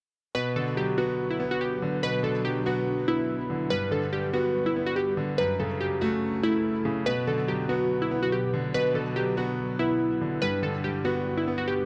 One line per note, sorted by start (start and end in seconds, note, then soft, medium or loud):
0.35 1.40 B2 medium
0.35 3.67 B2 medium
0.35 3.67 F#3 medium
0.35 5.35 D4 medium
0.35 0.52 B4 loud
0.35 5.35 B4 medium
0.56 1.61 D3 medium
0.56 0.73 A4 medium
0.76 1.82 F#3 medium
0.76 0.94 G4 medium
0.98 1.38 B3 medium
0.98 1.28 F#4 medium
1.30 1.48 E4 medium
1.40 2.45 B3 medium
1.51 1.59 F#4 medium
1.61 1.78 G4 medium
1.82 2.21 D3 medium
2.03 3.08 B2 medium
2.03 2.20 B4 loud
2.23 3.28 D3 medium
2.23 2.41 A4 medium
2.44 3.50 F#3 medium
2.44 2.62 G4 medium
2.66 3.06 B3 loud
2.66 3.06 F#4 medium
3.08 3.71 B3 medium
3.08 3.67 E4 medium
3.50 3.71 D3 medium
3.70 4.76 G2 medium
3.70 5.37 G2 medium
3.70 5.37 G3 medium
3.70 3.88 B4 loud
3.91 4.96 D3 medium
3.91 4.09 A4 medium
4.12 5.17 G3 medium
4.12 4.30 G4 medium
4.33 4.75 B3 medium
4.33 4.64 F#4 medium
4.66 4.83 E4 medium
4.76 5.39 B3 medium
4.86 4.95 F#4 medium
4.96 5.14 G4 medium
5.17 5.38 D3 medium
5.38 7.05 F#2 medium
5.38 6.44 F#2 medium
5.38 10.38 F#3 medium
5.38 7.05 C#4 medium
5.38 7.05 A4 medium
5.38 5.56 B4 loud
5.60 6.65 C#3 medium
5.60 5.77 A4 medium
5.80 6.85 F#3 medium
5.80 5.98 G4 medium
6.01 6.42 A3 loud
6.01 6.41 F#4 medium
6.43 7.06 A3 medium
6.43 7.03 E4 loud
6.85 7.06 C#3 medium
7.06 8.11 B2 medium
7.06 10.39 B2 medium
7.06 10.39 D4 medium
7.06 7.24 B4 loud
7.06 11.85 B4 medium
7.27 8.32 D3 medium
7.27 7.45 A4 medium
7.48 8.53 F#3 medium
7.48 7.66 G4 medium
7.69 8.10 B3 medium
7.69 7.99 F#4 medium
8.02 8.19 E4 medium
8.11 9.16 B3 medium
8.23 8.31 F#4 medium
8.32 8.50 G4 medium
8.54 8.93 D3 medium
8.74 9.79 B2 medium
8.74 8.92 B4 loud
8.94 10.00 D3 medium
8.94 9.13 A4 medium
9.16 10.21 F#3 medium
9.16 9.33 G4 medium
9.37 9.78 B3 medium
9.37 9.77 F#4 medium
9.79 10.42 B3 medium
9.79 10.38 E4 medium
10.21 10.42 D3 medium
10.42 11.47 G2 medium
10.42 11.85 G2 medium
10.42 11.85 G3 medium
10.42 11.85 D4 medium
10.42 10.59 B4 loud
10.62 11.68 D3 medium
10.62 10.80 A4 medium
10.84 11.85 G3 medium
10.84 11.01 G4 medium
11.05 11.46 B3 loud
11.05 11.35 F#4 medium
11.37 11.55 E4 medium
11.48 11.85 B3 medium
11.58 11.66 F#4 medium
11.68 11.85 G4 medium